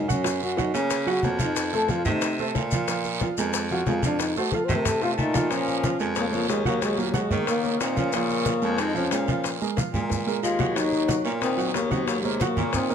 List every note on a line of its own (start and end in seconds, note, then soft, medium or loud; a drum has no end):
0.00 0.69 F#2 medium
0.08 0.22 F#3 medium
0.08 0.40 C#4 medium
0.08 0.22 F#4 medium
0.08 0.22 F#5 medium
0.08 high conga medium
0.08 short guiro medium
0.08 maracas medium
0.24 0.52 F#3 medium
0.24 0.52 F#4 medium
0.24 0.52 F#5 medium
0.24 high bongo medium
0.24 high conga soft
0.24 long guiro medium
0.24 maracas medium
0.41 0.62 F#4 loud
0.41 high bongo soft
0.41 high conga soft
0.41 maracas soft
0.57 0.71 F#3 medium
0.57 0.75 D#4 medium
0.57 0.72 F#4 medium
0.57 0.72 F#5 medium
0.57 high bongo medium
0.57 high conga medium
0.57 short guiro medium
0.57 maracas soft
0.74 1.20 C#3 medium
0.74 1.01 A#3 medium
0.74 1.06 C#4 loud
0.74 1.01 A#4 medium
0.74 1.01 C#5 medium
0.74 high bongo soft
0.74 high conga soft
0.74 short guiro medium
0.74 maracas medium
0.90 high bongo medium
0.90 high conga soft
0.90 long guiro medium
0.90 maracas medium
1.06 1.20 F#3 medium
1.06 1.21 F#4 medium
1.06 1.39 F#4 loud
1.06 1.21 F#5 medium
1.06 high bongo soft
1.06 high conga soft
1.06 maracas soft
1.23 2.00 F2 medium
1.23 1.37 A#3 medium
1.23 1.37 A#4 medium
1.23 1.38 C#5 medium
1.23 high bongo soft
1.23 low bongo medium
1.23 high conga medium
1.23 short guiro medium
1.23 maracas soft
1.39 1.67 F3 medium
1.39 1.72 D#4 medium
1.39 1.67 F4 medium
1.39 1.67 F5 medium
1.39 high conga medium
1.39 short guiro medium
1.39 maracas medium
1.55 high bongo medium
1.55 high conga soft
1.55 long guiro medium
1.55 maracas medium
1.73 1.87 A3 medium
1.73 1.87 A4 medium
1.73 1.93 A4 loud
1.73 1.87 C5 medium
1.73 high bongo soft
1.73 high conga soft
1.73 maracas soft
1.89 2.03 F3 medium
1.89 2.03 F4 medium
1.89 2.09 F4 loud
1.89 2.04 F5 medium
1.89 high bongo medium
1.89 high conga medium
1.89 short guiro medium
1.89 maracas soft
2.05 2.51 C3 loud
2.05 2.33 A3 medium
2.05 2.40 D#4 medium
2.05 2.33 A4 medium
2.05 2.33 C5 medium
2.05 high bongo soft
2.05 high conga soft
2.05 low conga medium
2.05 short guiro medium
2.05 maracas medium
2.21 high bongo medium
2.21 high conga soft
2.21 long guiro medium
2.21 maracas medium
2.38 2.67 A3 medium
2.38 2.67 A4 medium
2.38 2.67 C5 medium
2.38 high bongo soft
2.38 high conga soft
2.38 maracas soft
2.55 3.32 A#2 medium
2.55 high bongo soft
2.55 low bongo medium
2.55 high conga medium
2.55 short guiro medium
2.55 maracas soft
2.71 2.86 F3 medium
2.71 2.86 F4 medium
2.71 2.86 F5 medium
2.71 high conga medium
2.71 short guiro medium
2.71 maracas medium
2.88 3.15 F3 medium
2.88 3.16 F4 medium
2.88 3.16 F5 medium
2.88 high bongo medium
2.88 high conga soft
2.88 long guiro medium
2.88 maracas medium
3.04 high bongo soft
3.04 high conga soft
3.04 maracas soft
3.21 3.35 F3 medium
3.21 3.35 F4 medium
3.21 3.35 F5 medium
3.21 high bongo medium
3.21 high conga medium
3.21 short guiro medium
3.21 maracas soft
3.37 3.83 F2 loud
3.37 3.65 G#3 medium
3.37 3.65 G#4 medium
3.37 3.65 A#4 medium
3.37 high bongo soft
3.37 high conga soft
3.37 short guiro medium
3.37 maracas medium
3.53 high bongo medium
3.53 high conga soft
3.53 long guiro medium
3.53 maracas medium
3.70 3.84 F3 medium
3.70 3.85 F4 medium
3.70 3.90 F#4 medium
3.70 3.85 F5 medium
3.70 high bongo soft
3.70 high conga soft
3.70 maracas soft
3.85 4.36 F2 medium
3.85 4.01 G#3 medium
3.85 4.04 F4 medium
3.85 4.01 G#4 medium
3.85 4.01 A#4 medium
3.85 high bongo soft
3.85 low bongo medium
3.85 high conga medium
3.85 short guiro medium
3.85 maracas soft
4.02 4.31 F3 medium
4.02 4.22 D4 medium
4.02 4.31 F4 medium
4.02 4.31 F5 medium
4.02 high conga medium
4.02 short guiro medium
4.02 maracas medium
4.19 4.37 D#4 medium
4.19 high bongo medium
4.19 high conga soft
4.19 long guiro medium
4.19 maracas medium
4.36 4.50 A3 medium
4.36 4.56 F#4 medium
4.36 4.50 A4 medium
4.36 4.51 C5 medium
4.36 high bongo soft
4.36 high conga soft
4.36 maracas soft
4.52 4.67 F3 medium
4.52 4.67 F4 medium
4.52 4.66 A4 medium
4.52 4.67 F5 medium
4.52 high bongo medium
4.52 high conga medium
4.52 short guiro medium
4.52 maracas soft
4.65 5.14 C3 loud
4.65 4.78 C5 loud
4.65 short guiro medium
4.69 4.96 A3 medium
4.69 4.96 A4 medium
4.69 4.96 C5 medium
4.69 high bongo soft
4.69 high conga soft
4.69 low conga medium
4.69 maracas medium
4.77 4.88 A#4 medium
4.85 5.02 A4 loud
4.85 high bongo medium
4.85 high conga soft
4.85 low conga medium
4.85 long guiro medium
4.85 maracas medium
5.01 5.29 A3 medium
5.01 5.13 F4 loud
5.01 5.30 A4 medium
5.01 5.29 C5 medium
5.01 high bongo medium
5.01 high conga soft
5.01 maracas soft
5.17 5.94 A#2 medium
5.17 5.52 A3 medium
5.17 5.54 D#4 loud
5.17 high conga medium
5.17 short guiro medium
5.17 maracas soft
5.34 5.48 F3 medium
5.34 5.48 F4 medium
5.34 5.48 F5 medium
5.34 low bongo loud
5.34 high conga medium
5.34 short guiro medium
5.34 maracas medium
5.51 6.00 F3 medium
5.51 5.78 F3 medium
5.51 6.01 C#4 loud
5.51 5.78 F4 medium
5.51 5.78 F5 medium
5.51 high bongo medium
5.51 high conga soft
5.51 long guiro medium
5.51 maracas medium
5.67 high bongo soft
5.67 high conga soft
5.67 maracas soft
5.83 5.98 F3 medium
5.83 5.98 F4 medium
5.83 5.98 F5 medium
5.83 high bongo medium
5.83 high conga medium
5.83 short guiro medium
5.83 maracas medium
6.00 6.46 F2 loud
6.00 6.27 G#3 medium
6.00 6.27 G#4 medium
6.00 6.27 A#4 medium
6.00 high bongo soft
6.00 short guiro medium
6.00 maracas soft
6.15 6.28 C#3 medium
6.15 6.28 A#3 medium
6.15 high bongo medium
6.15 high conga soft
6.15 long guiro medium
6.15 maracas medium
6.28 6.34 C3 medium
6.28 6.49 C#3 medium
6.28 6.35 A3 medium
6.33 6.46 F3 medium
6.33 6.49 A#3 medium
6.33 6.47 F4 medium
6.33 6.46 F5 medium
6.33 high conga soft
6.33 maracas soft
6.48 7.25 D#2 medium
6.48 6.65 C#3 medium
6.48 6.62 G#3 medium
6.48 6.65 G#3 medium
6.48 6.62 G#4 medium
6.48 6.63 A#4 medium
6.48 high bongo medium
6.48 low bongo medium
6.48 high conga soft
6.48 short guiro medium
6.48 maracas medium
6.65 6.82 C#3 medium
6.65 6.92 F#3 medium
6.65 6.84 A#3 medium
6.65 6.93 F#4 medium
6.65 6.93 F#5 medium
6.65 high bongo soft
6.65 high conga medium
6.65 short guiro medium
6.65 maracas soft
6.82 7.01 C#3 medium
6.82 7.01 G#3 medium
6.82 high bongo medium
6.82 high conga soft
6.82 long guiro medium
6.82 maracas medium
6.97 7.17 A#2 medium
6.97 7.17 F#3 medium
6.97 7.11 A#3 medium
6.97 7.12 A#4 medium
6.97 7.12 C#5 medium
6.97 high bongo soft
6.97 high conga soft
6.97 maracas soft
7.13 7.47 C#3 medium
7.13 7.28 F#3 medium
7.13 7.47 G#3 medium
7.13 7.28 F#4 medium
7.13 7.28 F#5 medium
7.13 high bongo medium
7.13 high conga medium
7.13 short guiro medium
7.13 maracas medium
7.31 7.77 D#3 medium
7.31 7.58 A#3 medium
7.31 7.58 A#4 medium
7.31 7.58 C#5 medium
7.31 high conga soft
7.31 low conga medium
7.31 short guiro medium
7.31 maracas soft
7.47 7.84 C#3 medium
7.47 7.83 A#3 loud
7.47 high bongo medium
7.47 high conga soft
7.47 long guiro medium
7.47 maracas medium
7.63 7.91 A#3 medium
7.63 7.91 A#4 medium
7.63 7.91 C#5 medium
7.63 high bongo soft
7.63 high conga soft
7.63 maracas soft
7.80 8.57 A#2 medium
7.80 8.00 D#3 medium
7.80 8.00 C4 medium
7.80 high bongo medium
7.80 low bongo medium
7.80 high conga soft
7.80 short guiro medium
7.80 maracas medium
7.96 8.10 F3 medium
7.96 8.15 F3 medium
7.96 8.16 C#4 medium
7.96 8.10 F4 medium
7.96 8.10 F5 medium
7.96 high bongo soft
7.96 high conga medium
7.96 short guiro medium
7.96 maracas soft
8.13 8.82 C#3 medium
8.13 8.41 F3 medium
8.13 8.82 A#3 medium
8.13 8.41 F4 medium
8.13 8.41 F5 medium
8.13 high bongo medium
8.13 high conga soft
8.13 long guiro medium
8.13 maracas medium
8.30 high bongo soft
8.30 high conga soft
8.30 maracas soft
8.46 8.60 F3 medium
8.46 8.60 F4 medium
8.46 8.60 F5 medium
8.46 high bongo medium
8.46 high conga medium
8.46 short guiro medium
8.46 maracas medium
8.62 9.08 F2 medium
8.62 8.89 G#3 medium
8.62 8.89 G#4 medium
8.62 8.90 A#4 medium
8.62 high bongo soft
8.62 short guiro medium
8.62 maracas soft
8.78 8.96 G#3 medium
8.78 8.96 D#4 medium
8.78 high bongo medium
8.78 high conga soft
8.78 long guiro medium
8.78 maracas medium
8.94 9.08 F3 medium
8.94 9.58 F3 medium
8.94 9.58 C#4 medium
8.94 9.09 F4 medium
8.94 9.09 F5 medium
8.94 high conga soft
8.94 maracas soft
9.11 9.61 A#2 medium
9.11 9.26 G#3 medium
9.11 9.26 G#4 medium
9.11 9.26 A#4 medium
9.11 high bongo medium
9.11 low bongo medium
9.11 high conga soft
9.11 short guiro medium
9.11 maracas medium
9.28 9.55 F3 medium
9.28 9.56 F4 medium
9.28 9.56 F5 medium
9.28 high bongo soft
9.28 high conga medium
9.28 short guiro medium
9.28 maracas soft
9.44 high bongo medium
9.44 high conga soft
9.44 long guiro medium
9.44 maracas medium
9.61 9.75 G#3 medium
9.61 9.75 G#4 medium
9.61 9.75 A#4 medium
9.61 high bongo soft
9.61 high conga soft
9.61 maracas soft
9.76 9.91 F3 medium
9.76 9.91 F4 medium
9.76 9.91 F5 medium
9.76 high bongo medium
9.76 high conga loud
9.76 short guiro medium
9.76 maracas medium
9.94 10.40 A#2 medium
9.94 10.22 G#3 medium
9.94 10.22 G#4 medium
9.94 10.22 A#4 medium
9.94 high conga soft
9.94 low conga medium
9.94 short guiro medium
9.94 maracas soft
10.10 high bongo medium
10.10 high conga soft
10.10 low conga medium
10.10 long guiro medium
10.10 maracas medium
10.27 10.54 G#3 medium
10.27 10.54 G#4 medium
10.27 10.54 A#4 medium
10.27 high conga soft
10.27 maracas soft
10.42 11.19 D#2 medium
10.42 10.78 G#3 medium
10.42 10.79 F4 loud
10.42 high conga soft
10.42 short guiro medium
10.42 maracas medium
10.59 10.73 F#3 medium
10.59 10.73 F#4 medium
10.59 10.74 F#5 medium
10.59 low bongo medium
10.59 high conga medium
10.59 short guiro medium
10.59 maracas soft
10.76 11.03 F#3 medium
10.76 11.26 F#3 medium
10.76 11.26 D#4 loud
10.76 11.03 F#4 medium
10.76 11.03 F#5 medium
10.76 high bongo medium
10.76 high conga soft
10.76 long guiro medium
10.76 maracas medium
10.92 high bongo soft
10.92 high conga soft
10.92 maracas soft
11.08 11.22 F#3 medium
11.08 11.22 F#4 medium
11.08 11.22 F#5 medium
11.08 high bongo medium
11.08 high conga loud
11.08 short guiro medium
11.08 maracas medium
11.25 11.71 A#2 medium
11.25 11.52 A#3 medium
11.25 11.52 A#4 medium
11.25 11.52 C#5 medium
11.25 high bongo soft
11.25 short guiro medium
11.25 maracas soft
11.41 11.77 D#3 medium
11.41 11.77 C4 medium
11.41 high bongo medium
11.41 high conga soft
11.41 long guiro medium
11.41 maracas medium
11.57 11.71 F#3 medium
11.57 11.72 F#4 medium
11.57 11.72 F#5 medium
11.57 high conga soft
11.57 maracas soft
11.74 12.51 D#2 medium
11.74 11.93 C#3 medium
11.74 11.88 A#3 medium
11.74 11.93 A#3 medium
11.74 11.88 A#4 medium
11.74 11.89 C#5 medium
11.74 high bongo medium
11.74 low bongo medium
11.74 high conga soft
11.74 short guiro medium
11.74 maracas medium
11.91 12.09 D#3 medium
11.91 12.18 F#3 medium
11.91 12.09 C4 medium
11.91 12.18 F#4 medium
11.91 12.18 F#5 medium
11.91 high bongo soft
11.91 high conga medium
11.91 short guiro medium
11.91 maracas soft
12.07 12.21 C#3 medium
12.07 12.21 A#3 loud
12.07 high bongo medium
12.07 high conga soft
12.07 long guiro medium
12.07 maracas medium
12.19 12.26 A#2 soft
12.19 12.25 G3 medium
12.19 high bongo soft
12.24 12.43 C3 medium
12.24 12.43 G#3 medium
12.24 12.38 A#3 medium
12.24 12.38 A#4 medium
12.24 12.38 C#5 medium
12.24 high conga soft
12.24 maracas soft
12.40 12.74 C#3 medium
12.40 12.55 F#3 medium
12.40 12.73 A#3 medium
12.40 12.55 F#4 medium
12.40 12.55 F#5 medium
12.40 high bongo medium
12.40 high conga medium
12.40 short guiro medium
12.40 maracas medium
12.56 12.95 A#2 loud
12.56 12.84 A#3 medium
12.56 12.84 A#4 medium
12.56 12.85 C#5 medium
12.56 high conga soft
12.56 low conga medium
12.56 short guiro medium
12.56 maracas soft
12.73 12.95 D#3 medium
12.73 12.95 C4 loud
12.73 high bongo medium
12.73 high conga soft
12.73 low conga medium
12.73 long guiro medium
12.73 maracas medium
12.89 12.95 A#3 medium
12.89 12.95 A#4 medium
12.89 12.95 C#5 medium
12.89 high bongo soft
12.89 high conga soft
12.89 maracas soft